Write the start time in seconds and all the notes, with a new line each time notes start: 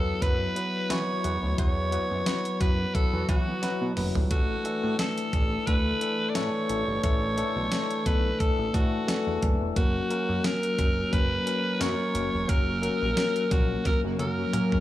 Already playing: E2 F#3 B3 E4 A4 B4
0.21 F#2 F#3 B3 E4 B4, kick, closed hi-hat
0.56 F#3 B3 E4 B4, closed hi-hat
0.90 E3 F#3 B3 E4 B4 C#5, snare, closed hi-hat, tambourine
1.24 E2 F#3 B3 E4 B4, closed hi-hat
1.43 D2
1.57 E2 F#3 B3 E4 B4 C#5, kick, closed hi-hat
1.92 F#3 B3 E4 B4, closed hi-hat
2.11 F#2
2.26 F#3 B3 E4 B4, snare, closed hi-hat, tambourine
2.45 closed hi-hat
2.60 F#2 F#3 B3 E4 B4, kick, closed hi-hat
2.94 F#3 B3 E4 A4 B4, kick, closed hi-hat
3.13 E2 B3 F#4
3.28 E3 F#3 B3 E4 F#4 B4, kick, closed hi-hat
3.47 B3 F#4
3.62 F#3 B3 E4 B4, snare, closed hi-hat
3.81 B2
3.97 F#1 F#3 B3 E4 B4, mid tom, open hi-hat
4.15 G1, floor tom
4.30 A1 E3 A3 D4 F#4 A4, kick, closed hi-hat
4.64 E3 A3 D4 A4, closed hi-hat
4.84 A2
4.98 E3 A3 D4 A4, snare, closed hi-hat, tambourine
5.18 closed hi-hat
5.33 A1 E3 A3 D4 A4, kick, closed hi-hat
5.66 D2 E3 A3 D4 A4 B4, kick, closed hi-hat
6.01 E3 A3 D4 A4, closed hi-hat
6.29 D5
6.35 A2 E3 A3 D4 A4 C#5, snare, closed hi-hat, tambourine
6.69 A1 E3 A3 D4 A4, closed hi-hat
6.88 G1
7.03 A1 E3 A3 D4 A4 C#5, kick, closed hi-hat
7.37 E3 A3 D4 A4, closed hi-hat
7.56 B1
7.71 E3 A3 D4 A4, snare, closed hi-hat, tambourine
7.91 closed hi-hat
8.06 B1 E3 A3 D4 A4 B4, kick, closed hi-hat
8.39 E3 A3 D4 A4, kick, closed hi-hat
8.59 A1
8.73 A2 E3 A3 D4 F#4 A4, kick, closed hi-hat
9.07 E3 A3 D4 A4, snare, closed hi-hat, tambourine
9.27 E2
9.41 F#1 E3 A3 D4 A4, kick, closed hi-hat
9.61 E1
9.76 F#1 F#3 A#3 C#4 F#4 A#4, kick, closed hi-hat
10.10 F#3 A#3 C#4 A#4, closed hi-hat
10.29 F#2
10.44 F#3 A#3 C#4 A#4, snare, closed hi-hat, tambourine
10.63 closed hi-hat
10.78 F#1 F#3 A#3 C#4 A#4, kick, closed hi-hat
11.11 F#1 F#3 A#3 C#4 A#4 B4, kick, closed hi-hat
11.46 F#3 A#3 C#4 A#4, closed hi-hat
11.80 F#2 F#3 A#3 C#4 A#4 C#5, snare, closed hi-hat, tambourine
12.14 F#1 F#3 A#3 C#4 A#4, closed hi-hat
12.34 E1
12.48 F#1 F#3 A#3 C#4 A#4, kick, closed hi-hat
12.82 F#3 A#3 C#4 A#4, closed hi-hat
13.02 A#1
13.16 F#3 A#3 C#4 A#4, snare, closed hi-hat, tambourine
13.36 closed hi-hat
13.50 A#1 F#3 A#3 C#4 F#4 A#4, kick, closed hi-hat
13.85 F#3 A#3 C#4 A#4, kick, snare, closed hi-hat
14.04 F#1 C#3 A#3 F#4
14.19 F#2 F#3 A#3 C#4 A#4, closed hi-hat, high tom
14.38 F#3 C#4 A#4
14.53 F#3 A#3 C#4 A#4, closed hi-hat, mid tom
14.72 C#2, mid tom